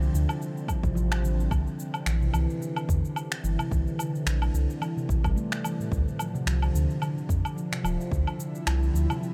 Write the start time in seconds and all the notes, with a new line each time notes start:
Already playing: D3 G3 C4 E4
0.02 cabasa
0.13 D2 D3, cabasa
0.29 cabasa, low woodblock
0.42 cabasa
0.57 cabasa
0.68 F3, kick, cabasa, low woodblock
0.83 A1 C3, kick, cabasa
0.95 F3, cabasa
1.12 finger snap, cabasa, low woodblock
1.23 D3, cabasa
1.40 cabasa
1.51 C2 D3, kick, cabasa, low woodblock
1.67 cabasa
1.79 cabasa
1.94 cabasa, low woodblock
2.06 A#1 E3, finger snap, cabasa
2.21 C3, cabasa
2.33 C2 E3, cabasa, low woodblock
2.50 cabasa
2.61 D3, cabasa
2.76 cabasa, low woodblock
2.88 E2 D3, kick, cabasa
3.05 cabasa
3.16 cabasa, low woodblock
3.32 finger snap, cabasa
3.44 G1 E3, cabasa
3.59 C3, cabasa, low woodblock
3.71 C2 E3, kick, cabasa
3.87 cabasa
3.99 D3, cabasa, low woodblock
4.15 cabasa
4.26 A#1 D3, finger snap, cabasa
4.42 cabasa, low woodblock
4.54 C2, cabasa
4.70 cabasa
4.81 E3, cabasa, low woodblock
4.97 C3, cabasa
5.09 A#1 E3, kick, cabasa
5.24 G1 G3, kick, cabasa, low woodblock
5.36 A3, cabasa
5.52 finger snap, cabasa
5.64 E3, cabasa, low woodblock
5.80 A2, cabasa
5.92 D2, kick, cabasa
6.08 cabasa
6.19 F3, cabasa, low woodblock
6.34 C3, cabasa
6.39 G3
6.46 C2 F3, finger snap, cabasa
6.62 cabasa, low woodblock
6.73 D2 D3 E4, cabasa
6.90 cabasa
7.02 D3, cabasa, low woodblock
7.18 cabasa
7.29 F2, kick, cabasa
7.45 cabasa, low woodblock
7.54 F3 C4, cabasa
7.72 C3, finger snap, cabasa
7.84 D1 F3, cabasa, low woodblock
8.01 cabasa
8.11 D2 D3, kick, cabasa
8.27 cabasa, low woodblock
8.39 D3, cabasa
8.55 cabasa
8.67 C2, finger snap, cabasa, low woodblock
8.83 cabasa
8.94 D2 F3, cabasa
9.09 C3, cabasa, low woodblock
9.21 F3, cabasa